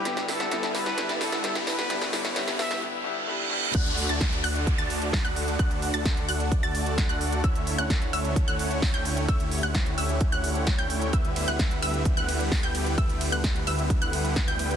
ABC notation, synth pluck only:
X:1
M:4/4
L:1/16
Q:1/4=130
K:D
V:1 name="Synth pluck"
z16 | z16 | f'3 a'3 f'3 a'4 f'3 | f'3 a'3 f'3 a'4 f'3 |
e'3 f'3 e'3 f'4 g'3 | e'3 f'3 e'3 f'4 g'3 | e'3 f'3 e'3 f'4 g'3 | e'3 f'3 e'3 f'4 g'3 |]